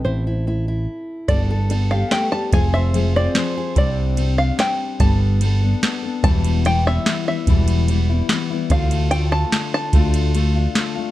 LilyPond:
<<
  \new Staff \with { instrumentName = "Five-string banjo" } { \time 3/4 \key e \phrygian \tempo 4 = 146 c''2 r4 | d''4. f''8 g''8 a''8 | aes''8 e''4 d''4 r8 | d''4. f''8 g''4 |
a''2~ a''8 r8 | a''4 g''8 e''4 e''8~ | e''4 r2 | f''4 g''8 a''4 a''8~ |
a''4 r2 | }
  \new Staff \with { instrumentName = "Steel-string acoustic guitar" } { \time 3/4 \key e \phrygian << { <e' a'>8 e'8 e'8 e'4. | a'8 a'8 a'8 g'4. | aes'8 c''8 aes'8 c'8 c''8 aes'8 | r2. |
r2. | r2. | r2. | r2. |
r2. | } \\ { a,4 a4 r4 | g4 d'4 a8 g8 | f4 aes4 c4 | r2. |
r2. | r2. | r2. | r2. |
r2. | } >> }
  \new Staff \with { instrumentName = "Steel-string acoustic guitar" } { \time 3/4 \key e \phrygian r2. | <g b d' a'>4 <g b d' a'>8 <b d' a'>8 <g b d' a'>4 | <f c' f' aes'>4 <f c' f' aes'>8 <c' f' aes'>8 <f c' f' aes'>4 | <c g c' d' g'>4 <g c' d' g'>8 <c' d' g'>8 <g c' d' g'>4 |
<g b d' a'>4 <g b d' a'>8 <b d' a'>8 <g b d' a'>8 <b d' a'>8 | <e, b, e g b e'>4 <e g b e'>8 <e g b e'>8 <e g b e'>8 <e g b e'>8 | <e, b, e g b e'>4 <e g b e'>8 <e g b e'>8 <e g b e'>8 <e g b e'>8 | <d a d' f'>4 <d a d' f'>4 <d a d' f'>4 |
<d a d' f'>4 <d a d' f'>8 <a d' f'>8 <d a d' f'>8 <a d' f'>8 | }
  \new Staff \with { instrumentName = "Picked electric bass" } { \clef bass \time 3/4 \key e \phrygian a,,2 r4 | g,,2 r4 | f,,2 r4 | c,2 r4 |
g,,2 r4 | e,,2 r4 | e,,2 r4 | d,2 r4 |
d,2 r4 | }
  \new DrumStaff \with { instrumentName = "Drums" } \drummode { \time 3/4 r4 r4 r4 | <bd cymr>4 cymr4 <cymr sn>4 | <bd cymr>4 cymr4 <cymr sn>4 | <bd cymr>4 cymr4 <cymr sn>4 |
<bd cymr>4 cymr4 <cymr sn>4 | <bd cymr>8 cymr8 cymr4 <cymr sn>4 | <bd cymr>8 cymr8 cymr4 <cymr sn>4 | <bd cymr>8 cymr8 cymr4 <cymr sn>4 |
<bd cymr>8 cymr8 cymr4 <cymr sn>4 | }
>>